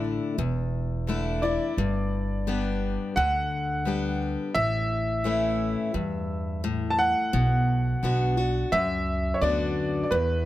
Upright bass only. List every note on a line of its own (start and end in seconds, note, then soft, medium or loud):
0.00 0.17 A1 medium
0.38 1.57 E1 medium
1.77 2.96 G1 medium
3.17 4.35 D2 medium
4.56 5.74 A1 medium
5.94 7.13 E2 medium
7.34 7.93 B1 medium
8.03 8.62 B1 medium
8.72 9.32 C#2 medium
9.42 10.01 D2 medium
10.11 10.45 E2 medium